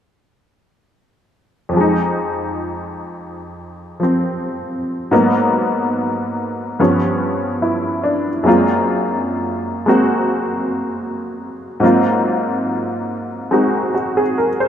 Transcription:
1.69 F2
1.73 F3 G#3
1.81 D#4
4.00 F3 C4
5.11 G#2 F#3 A#3 B3
6.79 G2 F3 B3 C#4
7.62 E4
8.04 D4
8.43 F#2 F#3 G#3 A#3
8.48 C4 F4
9.86 G#3 A#3 C4 F#4
11.80 G#2 F#3 A#3
11.84 C4 F4
13.51 G#3 C4 D#4 F#4
13.95 F#4
14.17 G#4
14.38 A#4
14.60 C5

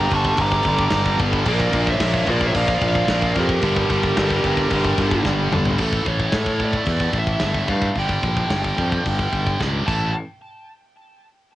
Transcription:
Already playing: G2 D3 G3 A#5
0.11 G1 G2 D3 G3 C#6, kick, crash
0.16 A5
0.25 kick
0.37 G1 G2 D3 G3 A#5, kick, crash
0.42 D6
0.52 kick
0.63 G1, kick, crash
0.67 G2 D3 G3
0.79 kick
0.90 G1 G2 D3 G3, kick, snare, crash
1.06 kick
1.19 G1 G2 D3 G3, kick, crash
1.33 kick
1.45 A#1 A#2 F3 A#3 A#4 D5, kick, crash
1.49 A#3
1.60 kick
1.73 A#1 A#2 F3 A#3, kick, crash
1.87 E5, kick
1.93 C#5
2.00 A#1 A#2 F3 A#3, kick, snare, crash
2.14 kick
2.26 A#1 A#2 F3 A#3, kick, crash
2.31 A#4 D5
2.41 kick
2.48 C#5 E5
2.55 A#1 A#2 F3 A#3 D5 F5, kick, crash
2.68 kick
2.81 A#1 A#2 F3 A#3, kick, crash
2.95 kick
3.08 A#1 A#2 F3 A#3, kick, snare, crash
3.22 kick
3.36 F2 A#2 F3 A#3 A#4, kick, crash
3.40 G4
3.49 kick
3.62 G1 G2 D3 G3, kick, crash
3.66 G3
3.77 kick
3.90 G1 G2 D3 G3, kick, crash
4.03 kick
4.17 G1 G2 D3 G3, kick, snare, crash
4.30 kick
4.44 G1 G2 D3 G3, kick, crash
4.57 kick
4.70 G1 G2 D3 G3, kick, crash
4.85 kick
4.98 G1 G2 D3 G3, kick, crash
5.11 kick
5.25 G1 G2 D3 G3, kick, snare
5.51 G1 G2 D3 G3 A4, mid tom
5.65 floor tom
5.78 A1 A2 E3 A3, kick, crash
5.82 A3
5.93 kick
6.06 A1 C#5, kick
6.20 kick
6.32 A2, kick, snare, open hi-hat
6.46 kick
6.59 A2 E3 A3, kick
6.64 D5
6.73 kick
6.86 E2, kick, open hi-hat
7.00 kick
7.13 A1, kick
7.19 E5
7.27 kick
7.40 G1 A2, kick, snare, open hi-hat
7.44 E3 A3
7.55 kick
7.68 G2 A2 E3 A3 F5, kick
7.82 kick
7.95 G1 G2 D3 G3, kick, open hi-hat
7.99 G3 G5
8.09 kick
8.23 A#1, kick
8.37 kick
8.50 G1, kick, snare, open hi-hat
8.64 kick
8.77 F2 D3 G3, kick
8.82 G2
8.92 kick
9.06 G1, kick, open hi-hat
9.19 kick
9.33 G1, kick
9.47 kick
9.60 C#2 G2 D3 G3, kick, snare
9.87 A1 A2 E3 A3 A5, kick, crash

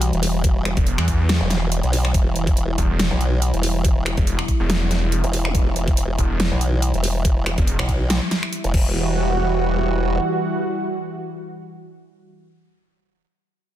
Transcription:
Already playing: B1 E3 G3 F#4
0.02 closed hi-hat
0.13 E1, closed hi-hat
0.23 open hi-hat
0.44 kick, closed hi-hat
0.65 finger snap, closed hi-hat
0.77 E1, kick, closed hi-hat
0.87 closed hi-hat
0.98 E2, finger snap
1.08 kick, closed hi-hat
1.29 snare, closed hi-hat
1.41 E1
1.50 snare, closed hi-hat
1.72 closed hi-hat
1.83 B1, closed hi-hat
1.93 open hi-hat
2.05 finger snap
2.14 E1 E4, kick, closed hi-hat
2.36 closed hi-hat
2.47 kick, closed hi-hat
2.57 closed hi-hat
2.78 E1, kick, closed hi-hat
2.99 snare, closed hi-hat
3.11 B1
3.21 closed hi-hat
3.42 closed hi-hat
3.54 E1, closed hi-hat
3.63 open hi-hat
3.85 kick, closed hi-hat
4.06 finger snap, closed hi-hat
4.17 E1, kick, closed hi-hat
4.27 closed hi-hat
4.39 finger snap
4.48 kick, closed hi-hat
4.60 E1
4.70 snare, closed hi-hat
4.91 snare, closed hi-hat
5.12 closed hi-hat
5.24 E1, closed hi-hat
5.33 open hi-hat
5.45 finger snap, zap
5.55 E1, kick, closed hi-hat
5.76 closed hi-hat
5.88 kick, closed hi-hat
5.97 closed hi-hat
6.18 E1, kick, closed hi-hat
6.40 snare, closed hi-hat
6.51 B1
6.61 closed hi-hat
6.82 closed hi-hat
6.94 E1, closed hi-hat
7.04 open hi-hat
7.25 kick, closed hi-hat
7.46 finger snap, closed hi-hat
7.58 E1, kick, closed hi-hat
7.67 closed hi-hat
7.79 B1, finger snap
7.89 kick, closed hi-hat
8.10 snare, closed hi-hat
8.31 snare, closed hi-hat
8.43 finger snap
8.53 closed hi-hat
8.64 E1, closed hi-hat
8.74 E1 E3 G3 F#4, kick, crash

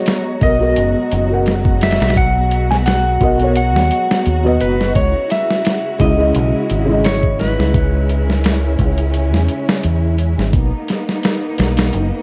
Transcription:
Already playing: B2 F#3 G#3 B3 F#4 A#4 C#5 D#5 A#5
0.06 snare, closed hi-hat
0.41 B1 B2 F#3 A#4 D#5, kick, closed hi-hat
0.60 B2 F#3 A#4 D#5
0.76 F#1, closed hi-hat
1.11 F#1, closed hi-hat
1.28 B2 F#3
1.32 A#4 F#5
1.46 snare, closed hi-hat
1.65 kick
1.81 E5, snare, closed hi-hat
1.91 snare, closed hi-hat
2.00 B1, snare, closed hi-hat
2.08 snare, closed hi-hat
2.16 F#5, kick, closed hi-hat
2.51 closed hi-hat
2.71 G#5, snare
2.86 F#5, snare, closed hi-hat
3.20 B1 B2 F#3 A#4 D#5, kick, closed hi-hat
3.38 B2 F#3, closed hi-hat
3.42 A#4 C#5
3.55 F#5, closed hi-hat
3.75 D#2, snare
3.91 closed hi-hat
4.11 snare
4.25 D#2, closed hi-hat
4.43 B2 F#3 B4 D#5
4.60 F#1 B4, closed hi-hat
4.81 snare
4.95 C#2 C#3 G#3 E4 C#5, kick, closed hi-hat
5.30 E5, snare, closed hi-hat
5.50 snare
5.65 snare, closed hi-hat
5.99 C#2 C#3 G#3 E4 D#5, kick, closed hi-hat
6.18 C#3 G#3 E4 D#5
6.35 B1, closed hi-hat
6.70 G#1, closed hi-hat
6.86 C#3 G#3
6.90 E4 D#5
7.04 C#5, snare, closed hi-hat
7.23 kick
7.39 B4, snare, closed hi-hat
7.59 C#2, snare
7.74 C#4, kick, closed hi-hat
8.09 closed hi-hat
8.28 A#4, snare
8.44 snare, closed hi-hat
8.79 C#2, kick, closed hi-hat
8.98 closed hi-hat
9.14 closed hi-hat
9.33 E2, snare
9.48 closed hi-hat
9.69 snare
9.83 E2, closed hi-hat
10.18 closed hi-hat
10.38 G#1, snare
10.53 B1 A#3 B3 D#4, kick, closed hi-hat
10.88 snare, closed hi-hat
11.09 snare
11.23 snare, closed hi-hat
11.58 B1, snare, closed hi-hat
11.77 snare, closed hi-hat
11.93 F#1, closed hi-hat

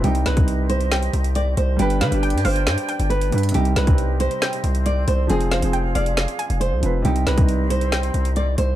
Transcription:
Already playing: C4
0.01 C2 C3 G3 G4 D#5, closed hi-hat
0.07 D#4
0.15 closed hi-hat
0.26 C2 B4, snare, closed hi-hat
0.34 C3 G3, kick, closed hi-hat
0.39 D#4
0.48 closed hi-hat
0.70 C5, closed hi-hat
0.81 closed hi-hat
0.92 G5, snare, closed hi-hat
1.03 closed hi-hat
1.13 C2, closed hi-hat
1.24 closed hi-hat
1.35 D5, closed hi-hat
1.57 C2 C5, closed hi-hat
1.76 G1 G3 D4 G4 D5 G5, closed hi-hat
1.82 B4
1.90 closed hi-hat
2.01 D3 B4 F5, snare, closed hi-hat
2.09 G1 G3 D4, closed hi-hat
2.15 G4
2.23 G5, closed hi-hat
2.30 G2, closed hi-hat
2.38 closed hi-hat
2.45 G1 C5 F5, open hi-hat
2.56 closed hi-hat
2.67 G2, snare, closed hi-hat
2.78 closed hi-hat
2.89 G5, closed hi-hat
3.00 G1, closed hi-hat
3.10 B4, closed hi-hat
3.21 closed hi-hat
3.30 G2 G3 D4, closed hi-hat
3.35 B4, closed hi-hat
3.43 closed hi-hat
3.49 C3, closed hi-hat
3.54 C2 G3 C4 D#4 G4 D#5, closed hi-hat
3.65 closed hi-hat
3.76 C2 B4, snare, closed hi-hat
3.85 C3 G3, kick, closed hi-hat
3.90 C4
3.98 closed hi-hat
4.20 C5, closed hi-hat
4.31 closed hi-hat
4.42 G5, snare, closed hi-hat
4.53 closed hi-hat
4.64 C2, closed hi-hat
4.75 closed hi-hat
4.86 D5, closed hi-hat
5.08 C2 C5, closed hi-hat
5.27 F1 F3 C4 G#4 F5, closed hi-hat
5.32 G#4
5.41 closed hi-hat
5.51 C5 F5, snare, closed hi-hat
5.60 F1 F3 C4, closed hi-hat
5.65 G#4
5.73 G5, closed hi-hat
5.95 F1 D5 F5, closed hi-hat
6.06 closed hi-hat
6.17 snare, closed hi-hat
6.28 closed hi-hat
6.39 G#5, closed hi-hat
6.50 F1, closed hi-hat
6.61 C5, closed hi-hat
6.72 C2
6.80 F1 F3 C4, closed hi-hat
6.85 B4
7.02 C2 C3 G3 C4 G4 D#5, closed hi-hat
7.07 D#4
7.16 closed hi-hat
7.26 C2 B4, snare, closed hi-hat
7.35 C3 G3, kick, closed hi-hat
7.40 D#4
7.49 closed hi-hat
7.70 C5, closed hi-hat
7.81 closed hi-hat
7.92 G5, snare, closed hi-hat
8.03 closed hi-hat
8.14 C2, closed hi-hat
8.25 closed hi-hat
8.36 D5, closed hi-hat
8.58 C2 C5, closed hi-hat

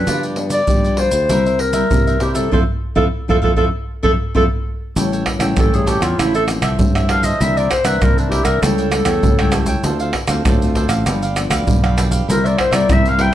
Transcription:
Already playing: F3 B3 D4 B4
0.07 G2 F4 G4 B4 D5, pandeiro, maracas, surdo
0.23 G4 B4 D5, pandeiro, maracas
0.36 F3 B3 D4, muted cavaquinho stroke, pandeiro
0.50 G4 B4 D5, pandeiro, maracas
0.68 D3 F3 G3 B3 D4, pandeiro, maracas, surdo
0.84 G4 B4 D5, pandeiro, maracas
0.97 F4 G4 B4 C5 D5, pandeiro
1.11 D2, pandeiro, maracas
1.29 C2 C3 G3 A#3 E4 A#4 C5 E5, pandeiro, maracas, surdo
1.46 A#4 C5 E5, pandeiro, maracas
1.59 A#4, muted cavaquinho stroke, pandeiro
1.73 G3 A#3 E4 A#4 C5 E5, pandeiro, maracas
1.91 G2 C3 G3 A#3 E4, pandeiro, maracas, surdo
2.07 A#4 C5 E5, pandeiro, maracas
2.20 C3 G3 A#3 E4 G4 A#4 C5 E5, pandeiro
2.34 C4 E4 A4 A#4 C5 E5, pandeiro, maracas
2.51 F2 C4 E4 F4 A4 C5 E5 F5, surdo
2.95 F2 C4 E4 F4 A4 C5 E5 F5, surdo
3.28 F2 C4 E4 F4 A4 C5 E5 F5, surdo
3.42 F2 C4 E4 F4 A4 C5 E5 F5, surdo
3.56 F2 C4 E4 F4 A4 C5 E5 F5, surdo
4.03 F2 C4 E4 F4 A4 C5 E5 F5, surdo
4.34 F2 C4 E4 F4 A4 C5 E5 F5, surdo
4.96 A1 A2 G3 C#4 E4 G4 A4 C#5 G5, pandeiro, maracas, surdo
5.12 A4 C#5 G5, pandeiro, maracas
5.26 muted cavaquinho stroke, pandeiro, tamborim, surdo
5.39 A1 G3 C#4 E4 A4 C#5 G5, pandeiro, tamborim, maracas
5.57 A1 E3 G4 A4 C#5 G5, pandeiro, tamborim, maracas, surdo
5.73 G3 C#4 E4 G#4, pandeiro, maracas
5.86 G4 A4 C#5 G5, pandeiro, maracas, surdo
6.00 E2 F4 A4 C#5 G5, pandeiro, tamborim, maracas, surdo
6.18 A1 A2 F3 C4 E4 F4 A4 C5 E5, pandeiro, tamborim, maracas, surdo
6.35 A4 C5 E5, pandeiro, maracas
6.48 F3 C4 E4, muted cavaquinho stroke, pandeiro, tamborim, maracas
6.62 C2 A4 C5 E5, pandeiro, tamborim, maracas, surdo
6.79 G2 A2, pandeiro, maracas, surdo
6.95 F3 C4 E4 A4 C5 E5, pandeiro, tamborim, maracas
7.09 F4 A4 C5 E5 F5, pandeiro, tamborim
7.23 A4 C5 D#5 E5, pandeiro, maracas, surdo
7.41 C2 C3 E3 A#3 D4 E4 A#4 C5 E5, pandeiro, maracas, surdo
7.57 A#4 C5 D5 E5, pandeiro, maracas
7.71 C5, muted cavaquinho stroke, pandeiro, tamborim, maracas, surdo
7.84 C2 E3 A#3 D4 A#4 B4 C5 E5, pandeiro, tamborim, maracas
8.02 C2 G2 E4 A#4 C5 E5, pandeiro, tamborim, maracas, surdo
8.18 E3 A#3 D4, pandeiro, maracas
8.30 E4 G4 A#4 C5 E5, pandeiro, surdo
8.44 C2 A#4 C5 E5, pandeiro, tamborim, maracas, surdo
8.62 C#2 C#3 G3 A3 E4 G4 A4 C#5 G5, pandeiro, tamborim, maracas, surdo
8.78 A4 C#5 G5, pandeiro, maracas
8.92 G3 A3 E4, muted cavaquinho stroke, pandeiro, tamborim, maracas
9.05 E2 A4 C#5 G5, pandeiro, tamborim, maracas, surdo
9.23 C#2 C#3, pandeiro, maracas, surdo
9.39 G3 A3 A4 C#5 G5, pandeiro, tamborim, maracas
9.43 E4
9.52 G4 A4 C#5 G5, pandeiro, tamborim, maracas
9.66 A4 C#5 G5, pandeiro, maracas, surdo
9.84 D2 D3 A3 C4 D4 F4 A4 C5 F5, pandeiro, maracas, surdo
10.00 A4 C5 F5, pandeiro, maracas
10.13 muted cavaquinho stroke, pandeiro, tamborim, surdo
10.28 D2 A3 C4 F4 A4 C5 F5, pandeiro, tamborim, maracas
10.45 D2 A2 D4 A4 C5 F5, pandeiro, tamborim, maracas, surdo
10.62 A3 C4 F4, pandeiro, maracas
10.75 D4 A4 C5 F5, pandeiro, surdo
10.89 A1 A4 C5 F5, pandeiro, tamborim, maracas, surdo
11.06 G1 G2 F3 B3 D4 G4 B4 F5, pandeiro, tamborim, maracas, surdo
11.22 G4 B4 F5, pandeiro, maracas
11.36 F3 B3 D4, muted cavaquinho stroke, pandeiro, tamborim, maracas
11.50 D2 G4 B4 F5, pandeiro, tamborim, maracas, surdo
11.67 B1 D3, pandeiro, maracas, surdo
11.84 F3 B3 D4 G4 B4 F5, pandeiro, tamborim, maracas
11.97 D4 G4 B4 F5, pandeiro, tamborim, maracas
12.11 G4 B4 F5, pandeiro, maracas, surdo
12.28 C2 C3 G3 A#3 E4 A#4 C5 E5, pandeiro, maracas, surdo
12.44 A#4 C5 D5 E5, pandeiro, maracas
12.58 C5, muted cavaquinho stroke, pandeiro, tamborim, surdo
12.71 C2 G3 A#3 E4 A#4 C5 D5 E5, pandeiro, tamborim, maracas
12.89 C2 G2 E4 A#4 C5 E5, pandeiro, tamborim, maracas, surdo
13.06 G3 A#3 E4 F5, pandeiro, maracas
13.19 E4 A#4 C5 E5 G5, pandeiro

